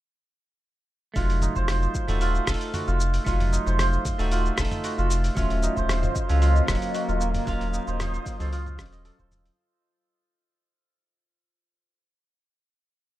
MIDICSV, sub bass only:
0, 0, Header, 1, 2, 480
1, 0, Start_track
1, 0, Tempo, 526316
1, 1058, Time_signature, 4, 2, 24, 8
1, 12035, End_track
2, 0, Start_track
2, 0, Title_t, "Sub bass"
2, 0, Program_c, 0, 38
2, 1057, Note_on_c, 0, 29, 98
2, 1349, Note_off_c, 0, 29, 0
2, 1422, Note_on_c, 0, 29, 97
2, 1709, Note_off_c, 0, 29, 0
2, 1903, Note_on_c, 0, 27, 99
2, 2190, Note_off_c, 0, 27, 0
2, 2256, Note_on_c, 0, 29, 84
2, 2336, Note_off_c, 0, 29, 0
2, 2623, Note_on_c, 0, 29, 86
2, 2910, Note_off_c, 0, 29, 0
2, 2976, Note_on_c, 0, 29, 93
2, 3268, Note_off_c, 0, 29, 0
2, 3343, Note_on_c, 0, 29, 91
2, 3630, Note_off_c, 0, 29, 0
2, 3823, Note_on_c, 0, 27, 92
2, 4110, Note_off_c, 0, 27, 0
2, 4176, Note_on_c, 0, 29, 80
2, 4256, Note_off_c, 0, 29, 0
2, 4544, Note_on_c, 0, 29, 88
2, 4830, Note_off_c, 0, 29, 0
2, 4896, Note_on_c, 0, 27, 91
2, 5188, Note_off_c, 0, 27, 0
2, 5262, Note_on_c, 0, 27, 94
2, 5549, Note_off_c, 0, 27, 0
2, 5743, Note_on_c, 0, 37, 97
2, 6030, Note_off_c, 0, 37, 0
2, 6095, Note_on_c, 0, 27, 88
2, 6175, Note_off_c, 0, 27, 0
2, 6461, Note_on_c, 0, 27, 89
2, 6749, Note_off_c, 0, 27, 0
2, 6815, Note_on_c, 0, 27, 97
2, 7107, Note_off_c, 0, 27, 0
2, 7182, Note_on_c, 0, 27, 101
2, 7469, Note_off_c, 0, 27, 0
2, 7662, Note_on_c, 0, 37, 102
2, 8015, Note_on_c, 0, 27, 95
2, 8029, Note_off_c, 0, 37, 0
2, 8307, Note_off_c, 0, 27, 0
2, 8381, Note_on_c, 0, 27, 90
2, 8669, Note_off_c, 0, 27, 0
2, 12035, End_track
0, 0, End_of_file